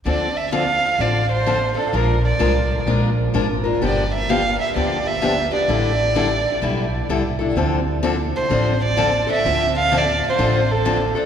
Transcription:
0.05 D2 D3 F3 C4 D4 A4 D5
0.37 E5
0.52 D3 F3 C4 D4 A4 F5
0.99 A1 D3 F3 C4 D4 A4 D5
1.32 C5
1.46 D3 F3 C4 D4 A4
1.75 C4 D4 A4
1.93 A#1 F3 G#3 D4 F4 A#4
2.25 D5
2.39 C2 F3 G#3 D4 F4 A#4
2.87 A#1 F3 G#3 D4 F4 A#4
3.34 G#1 F3 G#3 D4 F4 A#4
3.64 D4 F4 A#4
3.81 G1 D3 F3 B3 D4 G4 D5
4.14 E5
4.29 D3 F3 B3 D4 G4 F5
4.61 E5
4.75 D2 D3 F3 B3 D4 G4 D5
5.07 E5
5.21 D3 F3 B3 D4 G4
5.52 B3 D4 G4 D5
5.68 A1 D3 G3 D4 E4 A4
6.15 D3 G3 D4 E4 A4
6.62 B1 D3 G3 D4 E4 A4
7.09 C2 D3 G3 D4 E4 A4
7.39 D4 E4 A4
7.55 D2 D3 F3 C4 D4 A4
8.03 D3 F3 C4 D4 A4
8.36 C5
8.50 A1 D3 F3 C4 D4 A4
8.84 D5
8.97 D3 F3 C4 D4 A4
9.27 C4 D4 A4
9.32 E5
9.45 D2 D3 F3 C4 D4 A4
9.79 F5
9.92 D3 F3 C4 D4 A4
9.98 D5
10.29 C5
10.38 A1 D3 F3 C4 D4 A4
10.72 A4
10.85 D3 F3 C4 D4 A4
11.15 C4 D4 A4

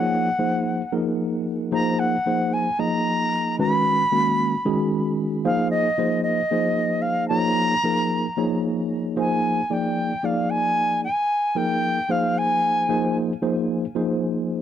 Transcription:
Already playing: F3 A#3 D#4 G#4 C#5 F#5
0.38 F3 A#3 D#4 G#4 C5
0.92 F3 A#3 D#4 G#4 A#4
1.72 F3 A#3 D#4 G#4 C5 A#5
1.99 F#5
2.26 F3 A#3 D#4 G#4 C5
2.53 G#5
2.79 F3 A#3 D#4 G#4 D#5 A#5
3.59 D#3 G#3 C#4 F#4 B4 B5
4.12 D#3 G#3 A#3 C#4 F#4
4.65 D#3 G#3 C#4 F#4 G#4
5.45 F3 A#3 D#4 G#4 C5 F5
5.70 D#5
5.98 F3 A#3 D#4 G#4 C5
6.23 D#5
6.51 F3 A#3 D#4 G#4 C5
7.02 F5
7.28 F3 A#3 D#4 G#4 C#5 A#5
7.84 F3 A#3 D#4 G#4 A#4
8.37 F3 A#3 D#4 G#4 C#5
9.16 F3 A#3 D#4 G#4 C5 G#5
9.70 F3 A#3 D#4 G#4 D5 G5
10.23 F3 A#3 D#4 G#4 D5 F5
10.50 G#5
11.04 G#5
11.55 F3 A#3 D#4 G#4 A#4 G5
12.09 F3 A#3 D#4 G#4 C5 F5
12.38 G#5
12.89 F3 A#3 D#4 G#4 C5
13.42 F3 A#3 D#4 G#4 C5
13.95 F3 A#3 D#4 G#4 C5

